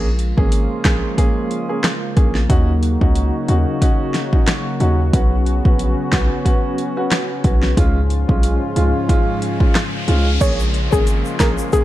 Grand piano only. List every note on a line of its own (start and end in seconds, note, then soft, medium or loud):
0.37 0.81 A#3 medium
0.37 0.81 C#4 medium
0.37 0.81 G#4 medium
0.84 1.15 A#3 medium
0.84 1.15 C#4 medium
0.84 1.16 G#4 medium
1.18 1.65 A#3 medium
1.18 1.65 C#4 medium
1.18 1.65 G#4 loud
1.69 1.85 A#3 medium
1.69 1.85 C#4 medium
1.69 1.85 G#4 medium
2.16 2.36 A#3 medium
2.16 2.36 C#4 medium
2.16 2.36 G#4 medium
2.49 2.69 C#4 medium
2.49 2.69 D#4 medium
2.49 2.69 F#4 loud
3.01 3.45 C#4 medium
3.01 3.45 D#4 medium
3.01 3.45 F#4 medium
3.48 3.79 C#4 medium
3.48 3.79 D#4 medium
3.48 3.79 F#4 medium
3.81 4.28 C#4 medium
3.81 4.29 D#4 medium
3.81 4.29 F#4 loud
4.33 4.49 C#4 medium
4.33 4.49 D#4 medium
4.33 4.49 F#4 medium
4.80 5.00 C#4 medium
4.80 5.00 D#4 medium
4.80 5.00 F#4 medium
5.13 5.33 B3 medium
5.13 5.33 C#4 medium
5.13 5.33 F#4 loud
5.65 6.09 B3 medium
5.65 6.09 C#4 medium
5.65 6.09 F#4 medium
6.12 6.43 B3 medium
6.12 6.43 C#4 medium
6.12 6.43 F#4 medium
6.45 6.92 B3 medium
6.45 6.92 C#4 medium
6.45 6.92 F#4 loud
6.97 7.41 B3 medium
6.97 7.41 C#4 medium
6.97 7.41 F#4 medium
7.44 7.75 B3 medium
7.44 7.75 C#4 medium
7.44 7.75 F#4 medium
7.77 7.97 G#3 medium
7.77 7.97 C#4 medium
7.77 7.97 F4 loud
8.28 8.72 G#3 medium
8.28 8.73 C#4 medium
8.28 8.73 F4 medium
8.76 9.07 G#3 medium
8.76 9.07 C#4 medium
8.76 9.07 F4 medium
9.09 9.56 G#3 medium
9.09 9.56 C#4 medium
9.09 9.56 F4 loud
9.60 9.76 G#3 medium
9.60 9.76 C#4 medium
9.60 9.77 F4 medium
10.08 10.27 G#3 medium
10.08 10.27 C#4 medium
10.08 10.28 F4 medium
10.41 10.60 A#3 medium
10.41 10.61 C#4 medium
10.41 10.61 G#4 loud
10.92 11.36 A#3 medium
10.92 11.36 C#4 medium
10.92 11.37 G#4 medium
11.40 11.70 A#3 medium
11.40 11.70 C#4 medium
11.40 11.71 G#4 medium
11.73 11.84 A#3 medium
11.73 11.84 C#4 medium
11.73 11.84 G#4 loud